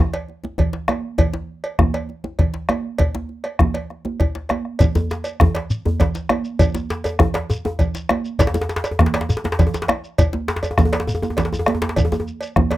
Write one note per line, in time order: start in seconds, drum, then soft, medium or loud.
0.14 cowbell soft
0.14 djembe slap medium
0.28 djembe slap soft
0.28 high conga soft
0.44 djembe tone medium
0.44 high conga medium
0.58 bombo low medium
0.58 cowbell soft
0.58 djembe slap soft
0.58 high conga soft
0.58 djembe bass medium
0.58 low conga medium
0.73 djembe slap medium
0.88 bombo rim medium
0.88 cowbell soft
0.88 djembe tone medium
0.88 high conga medium
1.18 bombo low medium
1.18 cowbell medium
1.18 djembe bass medium
1.18 low conga medium
1.33 djembe slap medium
1.33 djembe tone medium
1.64 cowbell soft
1.64 djembe slap soft
1.79 bombo rim medium
1.79 bombo low medium
1.79 djembe tone medium
1.79 high conga medium
1.79 djembe bass medium
1.79 low conga medium
1.94 cowbell soft
1.94 djembe slap medium
2.09 djembe slap soft
2.09 high conga soft
2.24 djembe tone medium
2.24 high conga medium
2.39 bombo low medium
2.39 cowbell soft
2.39 djembe slap soft
2.39 high conga soft
2.39 djembe bass medium
2.39 low conga medium
2.54 djembe slap medium
2.69 bombo rim medium
2.69 cowbell soft
2.69 djembe tone medium
2.69 high conga medium
2.98 bombo rim soft
2.98 bombo low medium
2.98 cowbell medium
2.98 djembe slap soft
2.98 djembe bass medium
2.98 low conga medium
3.15 bombo rim soft
3.15 djembe slap medium
3.15 djembe tone medium
3.15 high conga medium
3.29 djembe slap soft
3.44 bombo rim soft
3.44 cowbell soft
3.44 high conga soft
3.59 bombo rim medium
3.59 bombo low medium
3.59 djembe slap soft
3.59 djembe tone medium
3.59 high conga medium
3.59 djembe bass medium
3.59 low conga medium
3.74 cowbell soft
3.74 djembe slap medium
3.74 high conga soft
3.90 bombo rim soft
3.90 djembe slap soft
3.90 high conga soft
4.05 djembe tone medium
4.05 high conga medium
4.20 bombo low medium
4.20 cowbell soft
4.20 high conga soft
4.20 djembe bass medium
4.20 low conga medium
4.35 djembe slap medium
4.35 high conga soft
4.49 bombo rim medium
4.49 cowbell soft
4.49 djembe tone medium
4.49 high conga medium
4.65 bombo rim soft
4.79 bombo low loud
4.79 cowbell medium
4.79 djembe bass medium
4.79 low conga medium
4.79 shekere medium
4.95 djembe slap medium
4.95 djembe tone medium
4.95 high conga medium
4.95 djembe bass medium
4.95 shekere soft
5.10 djembe slap medium
5.10 shekere soft
5.24 cowbell soft
5.24 djembe slap soft
5.24 shekere soft
5.40 bombo rim loud
5.40 bombo low medium
5.40 djembe tone medium
5.40 high conga medium
5.40 djembe bass medium
5.40 low conga medium
5.40 djembe bass medium
5.55 cowbell soft
5.55 djembe slap medium
5.70 djembe slap soft
5.70 high conga soft
5.70 shekere medium
5.85 djembe tone medium
5.85 high conga medium
5.85 djembe bass medium
6.00 bombo low loud
6.00 cowbell soft
6.00 djembe slap soft
6.00 djembe slap medium
6.00 high conga soft
6.00 djembe bass medium
6.00 low conga medium
6.00 shekere soft
6.15 djembe slap medium
6.15 shekere soft
6.29 bombo rim medium
6.29 cowbell soft
6.29 djembe tone medium
6.29 high conga medium
6.45 shekere soft
6.59 bombo low loud
6.59 cowbell medium
6.59 djembe bass medium
6.59 low conga medium
6.59 shekere medium
6.75 djembe slap medium
6.75 djembe tone medium
6.75 high conga medium
6.75 shekere soft
6.90 djembe slap loud
6.90 shekere soft
7.04 cowbell soft
7.04 djembe slap soft
7.04 djembe tone medium
7.04 shekere soft
7.19 bombo rim loud
7.19 bombo low medium
7.19 high conga medium
7.19 djembe tone medium
7.19 low conga medium
7.19 djembe bass medium
7.34 cowbell soft
7.34 djembe slap medium
7.34 djembe slap loud
7.49 djembe slap soft
7.49 djembe tone medium
7.49 high conga soft
7.49 shekere medium
7.65 djembe tone medium
7.65 high conga medium
7.65 djembe tone medium
7.79 bombo low medium
7.79 cowbell soft
7.79 djembe slap soft
7.79 high conga soft
7.79 djembe bass medium
7.79 low conga medium
7.79 shekere soft
7.95 djembe slap medium
7.95 shekere soft
8.09 bombo rim medium
8.09 cowbell medium
8.09 djembe tone medium
8.09 high conga medium
8.25 shekere soft
8.39 bombo low medium
8.39 cowbell medium
8.39 djembe slap medium
8.39 djembe bass medium
8.39 low conga medium
8.39 shekere medium
8.47 djembe slap medium
8.54 djembe slap medium
8.54 djembe tone medium
8.54 high conga medium
8.54 shekere soft
8.61 djembe slap medium
8.69 djembe slap medium
8.69 shekere soft
8.76 djembe slap loud
8.84 cowbell soft
8.84 djembe slap medium
8.84 djembe slap soft
8.84 shekere soft
8.91 djembe tone medium
8.99 bombo rim medium
8.99 bombo low medium
8.99 djembe slap medium
8.99 djembe tone medium
8.99 high conga medium
8.99 low conga medium
9.06 djembe slap medium
9.14 cowbell medium
9.14 djembe slap loud
9.14 djembe slap medium
9.21 djembe slap medium
9.29 djembe slap soft
9.29 djembe tone medium
9.29 high conga soft
9.29 shekere medium
9.37 djembe slap medium
9.44 djembe slap medium
9.44 djembe tone medium
9.44 high conga medium
9.52 djembe slap loud
9.59 bombo low loud
9.59 cowbell soft
9.59 djembe slap soft
9.59 djembe slap medium
9.59 high conga soft
9.59 djembe bass medium
9.59 low conga medium
9.59 shekere soft
9.67 djembe tone medium
9.74 djembe slap medium
9.74 shekere soft
9.82 djembe slap medium
9.88 bombo rim loud
9.88 cowbell medium
9.88 djembe tone medium
9.88 high conga medium
10.04 shekere soft
10.18 bombo low loud
10.18 cowbell medium
10.18 djembe bass medium
10.18 low conga medium
10.18 shekere medium
10.33 djembe slap medium
10.33 djembe tone medium
10.33 high conga medium
10.48 bombo rim soft
10.48 djembe slap loud
10.48 high conga soft
10.48 shekere soft
10.56 djembe slap medium
10.63 cowbell soft
10.63 djembe tone medium
10.63 shekere soft
10.71 djembe tone medium
10.78 bombo rim medium
10.78 bombo low loud
10.78 djembe slap soft
10.78 djembe tone medium
10.78 high conga medium
10.78 djembe bass medium
10.78 low conga medium
10.78 shekere soft
10.85 djembe tone medium
10.93 cowbell soft
10.93 djembe slap medium
10.93 djembe slap loud
10.93 shekere soft
11.00 djembe slap medium
11.07 djembe tone medium
11.07 shekere medium
11.15 djembe tone medium
11.22 djembe tone medium
11.22 high conga medium
11.22 shekere soft
11.30 djembe tone medium
11.37 cowbell soft
11.37 djembe slap loud
11.37 djembe slap soft
11.37 low conga medium
11.37 djembe bass medium
11.37 shekere soft
11.45 djembe slap medium
11.53 djembe tone medium
11.53 high conga soft
11.53 djembe bass soft
11.53 shekere soft
11.59 djembe tone medium
11.66 bombo rim medium
11.66 cowbell soft
11.66 djembe slap soft
11.66 djembe tone medium
11.66 high conga medium
11.75 djembe tone medium
11.82 djembe slap loud
11.82 djembe slap medium
11.89 djembe slap medium
11.96 bombo low medium
11.96 cowbell medium
11.96 djembe tone medium
11.96 djembe bass medium
11.96 low conga medium
11.96 shekere medium
12.05 djembe tone medium
12.12 djembe slap soft
12.12 djembe tone medium
12.12 high conga medium
12.12 shekere soft
12.20 djembe tone medium
12.28 shekere soft
12.41 cowbell soft
12.41 djembe slap soft
12.41 shekere soft
12.56 bombo rim medium
12.56 bombo low medium
12.56 djembe tone medium
12.56 high conga medium
12.56 djembe bass medium
12.56 low conga medium
12.71 cowbell soft
12.71 djembe slap medium